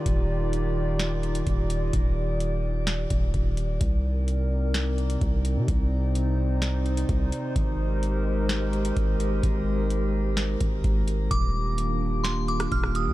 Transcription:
Already playing: analog synth pad D#3 D#4 F4 G4 D5
0.06 808-style bass D#1, kick, closed hi-hat
0.53 closed hi-hat
0.99 snare, closed hi-hat
1.23 closed hi-hat
1.35 closed hi-hat
1.47 808-style bass D#1, kick, closed hi-hat
1.70 closed hi-hat
1.93 808-style bass D#1, kick, closed hi-hat
2.40 closed hi-hat
2.87 snare, closed hi-hat
3.10 808-style bass D#1, kick, closed hi-hat
3.34 808-style bass D#1, kick, closed hi-hat
3.57 closed hi-hat
3.81 808-style bass C2, analog synth pad C3 C4 D#4 A#4, kick, closed hi-hat
4.28 closed hi-hat
4.74 snare, closed hi-hat
4.98 closed hi-hat
5.10 closed hi-hat
5.21 808-style bass C2, kick, closed hi-hat
5.45 closed hi-hat
5.57 808-style bass C3
5.68 808-style bass C2, analog synth pad C5, kick, closed hi-hat
6.15 closed hi-hat
6.62 snare, closed hi-hat
6.86 closed hi-hat
6.97 closed hi-hat
7.09 808-style bass C2, kick, closed hi-hat
7.32 closed hi-hat
7.56 808-style bass G#1, analog synth pad G#3 G4 A#4, kick, closed hi-hat
8.03 closed hi-hat
8.49 snare, closed hi-hat
8.73 closed hi-hat
8.85 closed hi-hat
8.97 808-style bass G#1, kick, closed hi-hat
9.20 closed hi-hat
9.43 808-style bass G#1, kick, closed hi-hat
9.90 closed hi-hat
10.37 snare, closed hi-hat
10.60 808-style bass G#1, kick, closed hi-hat
10.84 808-style bass G#1, kick, closed hi-hat
11.08 closed hi-hat
11.31 808-style bass D#1, analog synth pad D#3 A#3 D4 F4 G4, synth bell D6, kick, closed hi-hat
11.78 closed hi-hat
12.24 synth bell C6, snare, closed hi-hat
12.48 synth bell D6, closed hi-hat
12.60 cross-stick, closed hi-hat
12.72 808-style bass D#1, synth bell F6, kick, closed hi-hat
12.83 cross-stick
12.95 synth bell D#6, closed hi-hat
13.07 808-style bass D#2

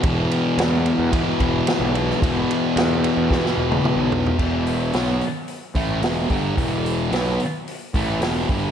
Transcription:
0.03 picked electric bass E1, distorted electric guitar E2 B2 E3, kick, ride
0.31 ride
0.58 picked electric bass E2, snare, ride
0.86 ride
0.98 picked electric bass E2
1.12 distorted electric guitar E2 B2 E3, kick, ride
1.40 picked electric bass E1, kick, ride
1.67 snare, ride
1.80 picked electric bass B1
1.95 ride
2.10 snare
2.21 picked electric bass E1, distorted electric guitar E2 B2 E3, kick, ride
2.51 ride
2.76 picked electric bass E2, snare, ride
3.04 ride
3.17 picked electric bass E2
3.30 distorted electric guitar E2 B2 E3, kick, snare
3.46 snare
3.58 picked electric bass E1
3.72 high tom
3.85 mid tom
3.96 picked electric bass B1
4.12 floor tom
4.26 floor tom
4.39 picked electric bass E1, distorted electric guitar E2 B2 E3, kick, crash
4.66 open hi-hat
4.93 picked electric bass B1, distorted electric guitar B2 F#3 B3, snare, open hi-hat
5.21 open hi-hat
5.48 open hi-hat
5.75 picked electric bass A1, distorted electric guitar A2 E3 A3, kick, open hi-hat
6.02 picked electric bass E1, distorted electric guitar E2 B2 E3, snare, open hi-hat
6.29 picked electric bass G1, distorted electric guitar G2 D3 G3, kick, open hi-hat
6.56 picked electric bass E1, distorted electric guitar E2 B2 E3, kick, open hi-hat
6.86 open hi-hat
7.10 picked electric bass B1, distorted electric guitar B2 F#3 B3, snare, open hi-hat
7.40 open hi-hat
7.68 open hi-hat
7.94 picked electric bass A1, distorted electric guitar A2 E3 A3, kick, open hi-hat
8.19 picked electric bass E1, distorted electric guitar E2 B2 E3, snare, open hi-hat
8.49 picked electric bass G1, distorted electric guitar G2 D3 G3, kick, open hi-hat

